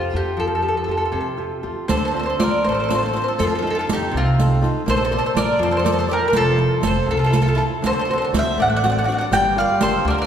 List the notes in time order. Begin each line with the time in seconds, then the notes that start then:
Already playing: C3 F4 G4 A4
0.13 F2 F4 G4 A4
0.37 F2 F3 A4
0.47 A4
0.55 A4
0.62 F4 G4 A4
0.68 A4
0.77 A4
0.84 A4
0.88 F2 F4 G4 A4
0.97 A4
1.05 A4
1.12 F2 C3 A4
1.21 A4
1.37 F4 G4 A4
1.63 E2 F4 G4 A4
1.88 D2 D3 A4 C5, riq
1.97 A4 C5
2.05 A4 C5
2.11 C4 D4 F4 C5
2.17 A4 C5
2.23 A4 C5
2.30 A4
2.39 D2 C4 D4 F4 D5, riq
2.43 A#4
2.64 A1 A3 C5
2.69 A4 C5
2.74 A4
2.80 A4 C5
2.89 C4 D4 F4 A4 C5, riq
2.95 A4 C5
3.03 A4 C5
3.09 C5
3.13 C4 D4 F4 A4 C5, riq
3.22 A4 C5
3.28 A4
3.38 F2 F3 A4, riq
3.43 F4 A4
3.50 F4
3.55 F4 A4
3.62 D#4 F4 A4
3.67 F4 A4
3.75 F4 A4
3.81 F4
3.87 F2 D#4 F4 A4, riq
3.93 D#4 G4
4.11 C2 C3
4.17 C4 F4
4.39 D#4 F4 A4, riq
4.62 D#4 F4 A4, riq
4.86 A#1 A#3 A4 C5, riq
4.97 A4 C5
5.05 A4 C5
5.10 A4 A#4 C5 D5
5.19 A4 C5
5.26 A4 C5
5.34 A#1 A4 A#4 D5, riq
5.38 A#4
5.59 F2 F3
5.63 A4 C5
5.71 A4 C5
5.77 A4 C5
5.83 A4 A#4 C5 D5, riq
5.93 A4 C5
5.99 A4 C5
6.07 A4 A#4 D5, riq
6.11 G4 A#4
6.28 G4 A#4
6.32 F1 F3, riq
6.36 F4 A4
6.57 E4 F4 A4, riq
6.81 F1 E4 F4 A4, riq
6.87 C5
7.06 C2 C3
7.11 F4 A4
7.17 F4 A4
7.24 F4 A4
7.29 E4 F4 A4, riq
7.34 A4
7.42 F4 A4
7.48 F4 A4
7.55 E4 F4 A4, riq
7.82 D2 D3 A4, riq
7.87 C5
7.92 A4
7.99 A4 C5
8.05 C4 D4 A4
8.10 F#4 A4 C5
8.18 C5
8.22 A4 C5
8.32 D2 C4 D4 F#4, riq
8.37 C5 E5
8.58 A1 A3 D5 F#5
8.68 D5 F#5
8.76 D5 F#5
8.83 C4 D4 F#4 D5 F#5, riq
8.90 D5 F#5
8.99 D5 F#5
9.04 C4 D4 F#4 D5 F#5
9.09 D5, riq
9.14 F#5
9.18 D5 F#5
9.31 G1 G3 D5 G5, riq
9.56 F4 G4 A#4 D5 F5
9.80 G1 F4 G4 A4 A#4 C5, riq
10.05 D2 D3 D5
10.10 A#4 D5
10.18 A#4 D5